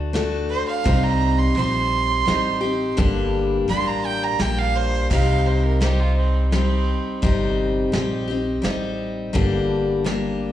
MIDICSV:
0, 0, Header, 1, 5, 480
1, 0, Start_track
1, 0, Tempo, 707464
1, 586, Time_signature, 3, 2, 24, 8
1, 7138, End_track
2, 0, Start_track
2, 0, Title_t, "Fiddle"
2, 0, Program_c, 0, 110
2, 337, Note_on_c, 0, 72, 92
2, 453, Note_off_c, 0, 72, 0
2, 459, Note_on_c, 0, 77, 88
2, 697, Note_on_c, 0, 82, 82
2, 707, Note_off_c, 0, 77, 0
2, 939, Note_on_c, 0, 84, 88
2, 949, Note_off_c, 0, 82, 0
2, 1054, Note_off_c, 0, 84, 0
2, 1057, Note_on_c, 0, 84, 107
2, 1994, Note_off_c, 0, 84, 0
2, 2504, Note_on_c, 0, 84, 95
2, 2626, Note_on_c, 0, 82, 90
2, 2637, Note_off_c, 0, 84, 0
2, 2749, Note_on_c, 0, 79, 96
2, 2759, Note_off_c, 0, 82, 0
2, 2872, Note_on_c, 0, 82, 88
2, 2882, Note_off_c, 0, 79, 0
2, 2991, Note_on_c, 0, 79, 86
2, 3001, Note_off_c, 0, 82, 0
2, 3109, Note_on_c, 0, 77, 92
2, 3119, Note_off_c, 0, 79, 0
2, 3231, Note_on_c, 0, 72, 103
2, 3241, Note_off_c, 0, 77, 0
2, 3460, Note_off_c, 0, 72, 0
2, 3470, Note_on_c, 0, 77, 94
2, 3707, Note_on_c, 0, 72, 77
2, 3718, Note_off_c, 0, 77, 0
2, 3822, Note_on_c, 0, 70, 86
2, 3832, Note_off_c, 0, 72, 0
2, 3935, Note_off_c, 0, 70, 0
2, 3944, Note_on_c, 0, 67, 70
2, 4068, Note_on_c, 0, 65, 77
2, 4078, Note_off_c, 0, 67, 0
2, 4178, Note_off_c, 0, 65, 0
2, 4182, Note_on_c, 0, 60, 75
2, 4416, Note_off_c, 0, 60, 0
2, 4430, Note_on_c, 0, 60, 84
2, 4893, Note_off_c, 0, 60, 0
2, 7138, End_track
3, 0, Start_track
3, 0, Title_t, "Steel-string acoustic guitar"
3, 0, Program_c, 1, 25
3, 0, Note_on_c, 1, 57, 67
3, 0, Note_on_c, 1, 62, 73
3, 0, Note_on_c, 1, 66, 75
3, 0, Note_on_c, 1, 69, 70
3, 82, Note_off_c, 1, 57, 0
3, 87, Note_off_c, 1, 62, 0
3, 90, Note_on_c, 1, 57, 71
3, 94, Note_off_c, 1, 66, 0
3, 95, Note_on_c, 1, 62, 71
3, 100, Note_off_c, 1, 69, 0
3, 103, Note_on_c, 1, 66, 66
3, 108, Note_on_c, 1, 69, 78
3, 571, Note_on_c, 1, 48, 75
3, 576, Note_off_c, 1, 57, 0
3, 578, Note_off_c, 1, 62, 0
3, 579, Note_on_c, 1, 55, 87
3, 581, Note_on_c, 1, 60, 84
3, 582, Note_off_c, 1, 66, 0
3, 584, Note_on_c, 1, 63, 89
3, 586, Note_off_c, 1, 69, 0
3, 588, Note_on_c, 1, 67, 92
3, 1056, Note_off_c, 1, 55, 0
3, 1058, Note_off_c, 1, 48, 0
3, 1059, Note_on_c, 1, 55, 66
3, 1060, Note_off_c, 1, 60, 0
3, 1065, Note_off_c, 1, 63, 0
3, 1068, Note_on_c, 1, 60, 68
3, 1072, Note_on_c, 1, 63, 61
3, 1076, Note_off_c, 1, 67, 0
3, 1079, Note_on_c, 1, 67, 72
3, 1527, Note_off_c, 1, 55, 0
3, 1529, Note_on_c, 1, 55, 61
3, 1533, Note_off_c, 1, 60, 0
3, 1540, Note_off_c, 1, 63, 0
3, 1541, Note_on_c, 1, 60, 58
3, 1548, Note_on_c, 1, 63, 71
3, 1550, Note_off_c, 1, 67, 0
3, 1553, Note_on_c, 1, 67, 76
3, 1760, Note_off_c, 1, 67, 0
3, 1769, Note_on_c, 1, 67, 66
3, 1774, Note_off_c, 1, 63, 0
3, 1777, Note_off_c, 1, 55, 0
3, 1782, Note_on_c, 1, 63, 52
3, 1783, Note_off_c, 1, 60, 0
3, 1792, Note_on_c, 1, 60, 46
3, 2014, Note_on_c, 1, 43, 89
3, 2017, Note_off_c, 1, 67, 0
3, 2017, Note_on_c, 1, 50, 96
3, 2020, Note_off_c, 1, 60, 0
3, 2020, Note_on_c, 1, 55, 99
3, 2023, Note_on_c, 1, 58, 85
3, 2024, Note_off_c, 1, 63, 0
3, 2028, Note_on_c, 1, 62, 105
3, 2032, Note_on_c, 1, 67, 107
3, 2487, Note_off_c, 1, 55, 0
3, 2495, Note_on_c, 1, 55, 60
3, 2498, Note_off_c, 1, 58, 0
3, 2499, Note_off_c, 1, 43, 0
3, 2501, Note_off_c, 1, 50, 0
3, 2506, Note_off_c, 1, 62, 0
3, 2506, Note_on_c, 1, 58, 62
3, 2508, Note_off_c, 1, 67, 0
3, 2514, Note_on_c, 1, 62, 67
3, 2517, Note_on_c, 1, 67, 71
3, 2968, Note_off_c, 1, 55, 0
3, 2977, Note_on_c, 1, 55, 59
3, 2978, Note_off_c, 1, 58, 0
3, 2984, Note_off_c, 1, 62, 0
3, 2986, Note_on_c, 1, 58, 61
3, 2991, Note_off_c, 1, 67, 0
3, 2993, Note_on_c, 1, 62, 66
3, 2999, Note_on_c, 1, 67, 80
3, 3461, Note_off_c, 1, 55, 0
3, 3461, Note_on_c, 1, 48, 75
3, 3465, Note_off_c, 1, 58, 0
3, 3468, Note_on_c, 1, 55, 75
3, 3469, Note_off_c, 1, 62, 0
3, 3472, Note_off_c, 1, 67, 0
3, 3472, Note_on_c, 1, 60, 69
3, 3475, Note_on_c, 1, 63, 81
3, 3480, Note_on_c, 1, 67, 76
3, 3936, Note_off_c, 1, 55, 0
3, 3939, Note_on_c, 1, 55, 66
3, 3943, Note_off_c, 1, 48, 0
3, 3943, Note_off_c, 1, 60, 0
3, 3945, Note_off_c, 1, 63, 0
3, 3951, Note_on_c, 1, 60, 66
3, 3953, Note_on_c, 1, 63, 66
3, 3958, Note_off_c, 1, 67, 0
3, 3961, Note_on_c, 1, 67, 70
3, 4423, Note_off_c, 1, 55, 0
3, 4425, Note_on_c, 1, 55, 66
3, 4426, Note_off_c, 1, 60, 0
3, 4429, Note_off_c, 1, 63, 0
3, 4434, Note_on_c, 1, 60, 68
3, 4439, Note_on_c, 1, 63, 71
3, 4446, Note_off_c, 1, 67, 0
3, 4449, Note_on_c, 1, 67, 70
3, 4899, Note_off_c, 1, 60, 0
3, 4899, Note_on_c, 1, 48, 85
3, 4900, Note_off_c, 1, 55, 0
3, 4903, Note_on_c, 1, 55, 79
3, 4904, Note_off_c, 1, 63, 0
3, 4907, Note_on_c, 1, 60, 88
3, 4912, Note_on_c, 1, 63, 92
3, 4913, Note_off_c, 1, 67, 0
3, 4916, Note_on_c, 1, 67, 96
3, 5371, Note_off_c, 1, 55, 0
3, 5374, Note_off_c, 1, 60, 0
3, 5374, Note_on_c, 1, 55, 63
3, 5382, Note_off_c, 1, 48, 0
3, 5382, Note_on_c, 1, 60, 67
3, 5384, Note_off_c, 1, 63, 0
3, 5392, Note_off_c, 1, 67, 0
3, 5392, Note_on_c, 1, 63, 76
3, 5394, Note_on_c, 1, 67, 73
3, 5607, Note_off_c, 1, 67, 0
3, 5615, Note_on_c, 1, 67, 54
3, 5619, Note_off_c, 1, 55, 0
3, 5622, Note_off_c, 1, 63, 0
3, 5623, Note_off_c, 1, 60, 0
3, 5630, Note_on_c, 1, 63, 44
3, 5639, Note_on_c, 1, 60, 48
3, 5847, Note_on_c, 1, 55, 67
3, 5850, Note_off_c, 1, 60, 0
3, 5854, Note_off_c, 1, 63, 0
3, 5858, Note_on_c, 1, 60, 66
3, 5860, Note_off_c, 1, 67, 0
3, 5862, Note_on_c, 1, 63, 77
3, 5868, Note_on_c, 1, 67, 84
3, 6330, Note_on_c, 1, 43, 85
3, 6334, Note_on_c, 1, 50, 87
3, 6335, Note_off_c, 1, 55, 0
3, 6337, Note_on_c, 1, 55, 86
3, 6340, Note_off_c, 1, 60, 0
3, 6342, Note_off_c, 1, 67, 0
3, 6342, Note_on_c, 1, 58, 93
3, 6343, Note_off_c, 1, 63, 0
3, 6345, Note_on_c, 1, 67, 99
3, 6346, Note_on_c, 1, 62, 91
3, 6812, Note_off_c, 1, 55, 0
3, 6812, Note_off_c, 1, 58, 0
3, 6815, Note_on_c, 1, 55, 66
3, 6817, Note_off_c, 1, 43, 0
3, 6819, Note_off_c, 1, 50, 0
3, 6819, Note_off_c, 1, 62, 0
3, 6820, Note_on_c, 1, 58, 68
3, 6827, Note_on_c, 1, 62, 67
3, 6831, Note_off_c, 1, 67, 0
3, 6834, Note_on_c, 1, 67, 75
3, 7138, Note_off_c, 1, 55, 0
3, 7138, Note_off_c, 1, 58, 0
3, 7138, Note_off_c, 1, 62, 0
3, 7138, Note_off_c, 1, 67, 0
3, 7138, End_track
4, 0, Start_track
4, 0, Title_t, "Upright bass"
4, 0, Program_c, 2, 32
4, 0, Note_on_c, 2, 38, 91
4, 364, Note_off_c, 2, 38, 0
4, 581, Note_on_c, 2, 36, 93
4, 989, Note_off_c, 2, 36, 0
4, 1056, Note_on_c, 2, 34, 87
4, 1468, Note_off_c, 2, 34, 0
4, 1540, Note_on_c, 2, 33, 79
4, 1950, Note_off_c, 2, 33, 0
4, 2024, Note_on_c, 2, 31, 88
4, 2431, Note_off_c, 2, 31, 0
4, 2502, Note_on_c, 2, 33, 80
4, 2911, Note_off_c, 2, 33, 0
4, 2982, Note_on_c, 2, 34, 77
4, 3391, Note_off_c, 2, 34, 0
4, 3466, Note_on_c, 2, 36, 84
4, 4685, Note_off_c, 2, 36, 0
4, 4903, Note_on_c, 2, 31, 83
4, 5310, Note_off_c, 2, 31, 0
4, 5383, Note_on_c, 2, 34, 81
4, 5792, Note_off_c, 2, 34, 0
4, 5860, Note_on_c, 2, 33, 71
4, 6270, Note_off_c, 2, 33, 0
4, 6343, Note_on_c, 2, 31, 90
4, 7138, Note_off_c, 2, 31, 0
4, 7138, End_track
5, 0, Start_track
5, 0, Title_t, "Drums"
5, 103, Note_on_c, 9, 38, 79
5, 103, Note_on_c, 9, 42, 61
5, 171, Note_off_c, 9, 38, 0
5, 171, Note_off_c, 9, 42, 0
5, 582, Note_on_c, 9, 36, 110
5, 582, Note_on_c, 9, 42, 66
5, 650, Note_off_c, 9, 36, 0
5, 650, Note_off_c, 9, 42, 0
5, 1064, Note_on_c, 9, 42, 65
5, 1132, Note_off_c, 9, 42, 0
5, 1546, Note_on_c, 9, 38, 88
5, 1546, Note_on_c, 9, 42, 60
5, 1613, Note_off_c, 9, 38, 0
5, 1613, Note_off_c, 9, 42, 0
5, 2023, Note_on_c, 9, 42, 61
5, 2025, Note_on_c, 9, 36, 112
5, 2091, Note_off_c, 9, 42, 0
5, 2093, Note_off_c, 9, 36, 0
5, 2506, Note_on_c, 9, 42, 60
5, 2574, Note_off_c, 9, 42, 0
5, 2982, Note_on_c, 9, 38, 88
5, 2982, Note_on_c, 9, 42, 61
5, 3050, Note_off_c, 9, 38, 0
5, 3050, Note_off_c, 9, 42, 0
5, 3464, Note_on_c, 9, 49, 92
5, 3466, Note_on_c, 9, 36, 110
5, 3532, Note_off_c, 9, 49, 0
5, 3534, Note_off_c, 9, 36, 0
5, 3944, Note_on_c, 9, 38, 81
5, 3944, Note_on_c, 9, 42, 66
5, 4012, Note_off_c, 9, 38, 0
5, 4012, Note_off_c, 9, 42, 0
5, 4426, Note_on_c, 9, 38, 78
5, 4426, Note_on_c, 9, 42, 59
5, 4494, Note_off_c, 9, 38, 0
5, 4494, Note_off_c, 9, 42, 0
5, 4904, Note_on_c, 9, 42, 62
5, 4905, Note_on_c, 9, 36, 112
5, 4972, Note_off_c, 9, 42, 0
5, 4973, Note_off_c, 9, 36, 0
5, 5382, Note_on_c, 9, 38, 90
5, 5382, Note_on_c, 9, 42, 62
5, 5450, Note_off_c, 9, 38, 0
5, 5450, Note_off_c, 9, 42, 0
5, 5863, Note_on_c, 9, 38, 82
5, 5863, Note_on_c, 9, 42, 52
5, 5931, Note_off_c, 9, 38, 0
5, 5931, Note_off_c, 9, 42, 0
5, 6344, Note_on_c, 9, 42, 60
5, 6345, Note_on_c, 9, 36, 107
5, 6412, Note_off_c, 9, 42, 0
5, 6413, Note_off_c, 9, 36, 0
5, 6825, Note_on_c, 9, 38, 96
5, 6825, Note_on_c, 9, 42, 65
5, 6893, Note_off_c, 9, 38, 0
5, 6893, Note_off_c, 9, 42, 0
5, 7138, End_track
0, 0, End_of_file